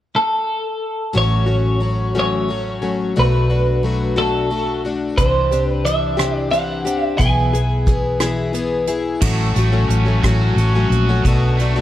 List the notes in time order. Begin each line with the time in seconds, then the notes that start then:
0.16 A4
1.13 A1 A2 E3 F#3 A3 C#4 F#4
1.18 C#5
1.46 F#3 A3 C#4 F#4
1.80 F#3 A3 C#4 F#4
2.15 A2 E3 F#3 A3 C#4 F#4
2.19 C#5
2.49 F#3 A3 C#4 F#4
2.82 F#3 A3 C#4 F#4
3.16 B1 B2 F#3 A3 D4 F#4 B4
3.50 A3 D4 F#4
3.83 F#3 A3 D4 F#4
4.16 B2 F#3 A3 D4 F#4 A4
4.50 F#3 A3 D4 F#4
4.85 A3 D4 F#4
5.18 C2 C3 E3 C4 D4 G4 C5, kick, closed hi-hat
5.51 C4 D4 G4, closed hi-hat
5.67 B4
5.85 E3 C4 D4 G4 E5, closed hi-hat
6.17 C3 E3 C4 D4 G4, cross-stick, closed hi-hat
6.37 D5
6.51 E3 C4 D4 G4 F#5, closed hi-hat
6.85 C4 D4 G4, closed hi-hat
7.04 E5
7.18 B1 B2 E3 B3 E4 G#4 G#5, kick, closed hi-hat
7.53 B3 E4 G#4, closed hi-hat
7.86 E3 B3 E4 G#4, kick, closed hi-hat
8.20 B2 E3 B3 E4 G#4, cross-stick, closed hi-hat
8.53 E3 B3 E4 G#4, closed hi-hat
8.87 B3 E4 G#4, closed hi-hat
9.21 A1 A2 E3 F#3 A3 C#4 F#4, kick, crash
9.56 A1 F#3 A3 C#4 F#4, closed hi-hat
9.72 F#3 A3 C#4 F#4
9.88 A1 C#4, closed hi-hat
10.05 F#3 A3 C#4 F#4
10.23 A1 A2 E3 F#3 A3 C#4 F#4, kick, cross-stick, closed hi-hat
10.56 A1 F#3 A3 C#4 F#4, closed hi-hat
10.75 F#3 A3 C#4 F#4
10.89 A#1 F#4, closed hi-hat
11.09 F#3 A3 C#4 F#4
11.25 B1 B2 F#3 A3 D4 F#4, kick, closed hi-hat
11.59 F#3 A3 D4 F#4, closed hi-hat
11.76 A3 D4 F#4